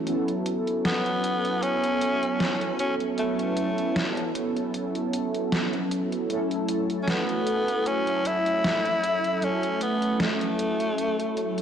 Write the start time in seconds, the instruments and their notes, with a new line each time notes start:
0.06 analog polysynth F#3 B3 C#4 E4 A4, closed hi-hat
0.28 closed hi-hat
0.46 closed hi-hat
0.67 closed hi-hat
0.85 tenor saxophone B3, snare, closed hi-hat
1.06 closed hi-hat
1.24 closed hi-hat
1.45 closed hi-hat
1.63 tenor saxophone C#4, closed hi-hat
1.84 closed hi-hat
2.01 closed hi-hat
2.23 closed hi-hat
2.40 analog polysynth F#3 B3 C#4 E4 A4, snare, closed hi-hat
2.62 closed hi-hat
2.79 tenor saxophone C#4, closed hi-hat
3.00 closed hi-hat
3.18 analog polysynth F#3 B3 C#4 E4 A4, tenor saxophone A3, closed hi-hat
3.39 closed hi-hat
3.57 closed hi-hat
3.78 closed hi-hat
3.96 snare, closed hi-hat
4.17 closed hi-hat
4.35 closed hi-hat
4.57 closed hi-hat
4.74 closed hi-hat
4.95 closed hi-hat
5.13 closed hi-hat
5.35 closed hi-hat
5.52 analog polysynth F#3 B3 C#4 E4 A4, snare, closed hi-hat
5.73 closed hi-hat
5.91 closed hi-hat
6.12 closed hi-hat
6.29 analog polysynth F#3 A3 C#4 E4 A4, closed hi-hat
6.51 closed hi-hat
6.68 closed hi-hat
6.90 closed hi-hat
7.03 tenor saxophone C#4
7.08 tenor saxophone B3, snare, closed hi-hat
7.29 closed hi-hat
7.47 closed hi-hat
7.68 closed hi-hat
7.86 tenor saxophone C#4, closed hi-hat
8.07 closed hi-hat
8.25 tenor saxophone E4, closed hi-hat
8.46 closed hi-hat
8.63 analog polysynth F#3 A3 C#4 E4 A4, snare, closed hi-hat
8.86 closed hi-hat
9.04 closed hi-hat
9.24 closed hi-hat
9.41 analog polysynth F#3 A3 C#4 E4 A4, tenor saxophone C#4, closed hi-hat
9.63 closed hi-hat
9.81 tenor saxophone B3, closed hi-hat
10.02 closed hi-hat
10.20 tenor saxophone A3, snare, closed hi-hat
10.41 closed hi-hat
10.59 closed hi-hat
10.80 closed hi-hat
10.98 closed hi-hat
11.19 closed hi-hat
11.37 closed hi-hat
11.58 closed hi-hat